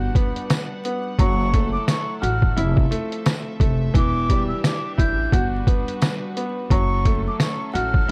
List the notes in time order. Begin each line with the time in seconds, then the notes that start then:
Already playing: G3 D4 F#4 B4 F#5
0.15 B3, kick, closed hi-hat
0.36 closed hi-hat
0.50 cross-stick, snare, closed hi-hat, tambourine
0.85 B3, closed hi-hat
1.18 F#1 F#3 E4 A4 C#6, kick, closed hi-hat
1.54 A3, kick, closed hi-hat
1.72 D6
1.88 C#6, cross-stick, snare, closed hi-hat, tambourine
2.20 A1 F#4 F6, closed hi-hat
2.42 kick
2.57 F1 F3 C4 E4 A4 E5, closed hi-hat
2.77 kick
2.91 A3, closed hi-hat
3.12 closed hi-hat
3.26 cross-stick, snare, closed hi-hat, tambourine
3.60 F1 A3, kick, closed hi-hat
3.94 E1 E3 D4 G4 D6, kick, closed hi-hat
4.30 G3, kick, closed hi-hat
4.48 E6
4.64 D6, cross-stick, snare, closed hi-hat, tambourine
4.97 A1 E4 G6, kick, closed hi-hat
5.32 G1 G3 F#4 B4, kick, closed hi-hat
5.67 B3, kick, closed hi-hat
5.88 closed hi-hat
6.02 cross-stick, snare, closed hi-hat, tambourine
6.37 B3, closed hi-hat
6.70 F#1 F#3 C#4 E4 A4 C#6, kick, closed hi-hat
7.05 A3, kick, closed hi-hat
7.28 D6
7.40 C#6, cross-stick, snare, closed hi-hat, tambourine
7.74 A1 F#4 F6, closed hi-hat
7.94 kick